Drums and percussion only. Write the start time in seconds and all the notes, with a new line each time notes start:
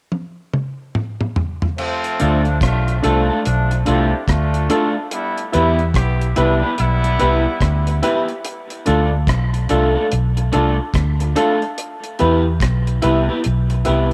0.12 high tom
0.54 mid tom
0.95 mid tom
1.21 mid tom
1.36 floor tom
1.62 floor tom
1.78 crash
2.04 closed hi-hat
2.20 closed hi-hat
2.45 closed hi-hat
2.61 kick, cross-stick, closed hi-hat
2.88 closed hi-hat
3.04 closed hi-hat
3.45 closed hi-hat
3.71 closed hi-hat
3.86 closed hi-hat
4.28 kick, cross-stick, closed hi-hat
4.54 closed hi-hat
4.70 closed hi-hat
5.11 closed hi-hat
5.38 closed hi-hat
5.53 closed hi-hat
5.79 closed hi-hat
5.94 kick, cross-stick, closed hi-hat
6.21 closed hi-hat
6.36 closed hi-hat
6.78 closed hi-hat
7.04 closed hi-hat
7.20 closed hi-hat
7.61 kick, cross-stick, closed hi-hat
7.87 closed hi-hat
8.03 closed hi-hat
8.28 closed hi-hat
8.45 closed hi-hat
8.70 closed hi-hat
8.86 closed hi-hat
9.27 kick, cross-stick, closed hi-hat
9.54 closed hi-hat
9.69 closed hi-hat
10.12 closed hi-hat
10.37 closed hi-hat
10.53 closed hi-hat
10.94 kick, cross-stick, closed hi-hat
11.20 closed hi-hat
11.36 closed hi-hat
11.62 closed hi-hat
11.78 closed hi-hat
12.04 closed hi-hat
12.19 closed hi-hat
12.60 kick, cross-stick, closed hi-hat
12.87 closed hi-hat
13.02 closed hi-hat
13.44 closed hi-hat
13.70 closed hi-hat
13.85 closed hi-hat